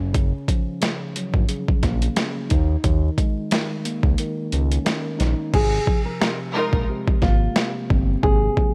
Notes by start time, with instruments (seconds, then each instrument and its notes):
Already playing: analog synth bass F#1, tine electric piano C#4
0.13 tine electric piano C#3, kick, closed hi-hat
0.48 tine electric piano F3, kick, closed hi-hat
0.81 tine electric piano C#3, snare, closed hi-hat
1.16 tine electric piano F#3, closed hi-hat
1.34 analog synth bass G#1, kick
1.49 tine electric piano C#3, closed hi-hat
1.68 kick
1.83 analog synth bass A#1, tine electric piano A#3, kick, snare, closed hi-hat
2.02 closed hi-hat
2.16 tine electric piano C#3, snare, closed hi-hat
2.50 analog synth bass D#2, tine electric piano D#4, kick, closed hi-hat
2.83 analog synth bass D#2, tine electric piano D#3, kick, closed hi-hat
3.18 tine electric piano G#3, kick, closed hi-hat
3.51 tine electric piano D#3, snare, closed hi-hat
3.85 tine electric piano A#3, closed hi-hat
4.03 analog synth bass C#2, kick
4.18 tine electric piano D#3, closed hi-hat
4.52 analog synth bass C#2, tine electric piano C#4, closed hi-hat
4.72 closed hi-hat
4.85 tine electric piano D#3, snare, closed hi-hat
5.19 analog synth bass A#1, tine electric piano D#4, snare, closed hi-hat
5.54 analog synth bass G#1, tine electric piano C3, nylon-string guitar G#4, kick, crash
5.86 tine electric piano F3, kick
6.05 nylon-string guitar A#4
6.20 tine electric piano C3, string section D#4 F4 A#4, snare
6.54 tine electric piano G#3, string section D#4 F4 A#4
6.73 analog synth bass A#1, kick
6.89 tine electric piano C3
7.08 kick
7.22 analog synth bass G#1, tine electric piano A#3, nylon-string guitar F4, kick, snare
7.56 tine electric piano C3, snare
7.90 analog synth bass G1, tine electric piano C4, kick
8.23 analog synth bass G#1, tine electric piano C3, nylon-string guitar G#4, kick
8.57 tine electric piano F3, kick